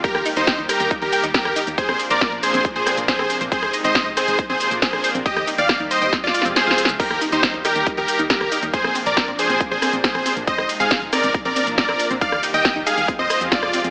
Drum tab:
CC |------------------------------------------------|------------------------------------------------|------------------------------------------------|------------------------------------------------|
HH |x--x--o--x--x--x--o--x--x--x--o--x--x--x--o--x--|x--x--o--x--x--x--o--x--x--x--o--x--x--x--o--x--|x--x--o--x--x--x--o--x--x--x--o--x--x--x--o--x--|x--x--o--x--x--x--o--x--x--x--o--x--x--x--o--x--|
SH |x-----x--x--x-----x--x--x-----x--x--x-----x--x--|x-----x--x--x-----x--x--x-----x--x--x-----x--x--|x-----x--x--x-----x--x--x-----x--x--x-----x--x--|x-----x--x--x-----x--x--x-----x--x--x-----x--x--|
SD |---r--------o-----r-----------------o--r--------|---r--------o-----------------r-----o--r--------|---r--------o-----r-----------------o--r--------|---r--------o-----------o---o---o---o---o---o---|
BD |o-----------o-----------o-----------o-----------|o-----------o-----------o-----------o-----------|o-----------o-----------o-----------o-----------|o-----------o-----------o-----------------------|

CC |x-----------------------------------------------|------------------------------------------------|------------------------------------------------|------------------------------------------------|
HH |x--x--o--x--x--x--o--x--x--x--o--x--x--x--o--x--|x--x--o--x--x--x--o--x--x--x--o--x--x--x--o--x--|x--x--o--x--x--x--o--x--x--x--o--x--x--x--o--x--|x--x--o--x--x--x--o--x--x--x--o--x--x--x--o--x--|
SH |x-----x--x--x-----x--x--x-----x--x--x-----x--x--|x-----x--x--x-----x--x--x-----x--x--x-----x--x--|x-----x--x--x-----x--x--x-----x--x--x-----x--x--|x-----x--x--x-----x--x--x-----x--x--x-----x--x--|
SD |---r--------o-----r-----------------o--r--------|---r--------o-----------------r-----o--r--------|---r--------o-----r-----------------o--r--------|---r--------o-----------------r-----o--r--------|
BD |o-----------o-----------o-----------o-----------|o-----------o-----------o-----------o-----------|o-----------o-----------o-----------o-----------|o-----------o-----------o-----------o-----------|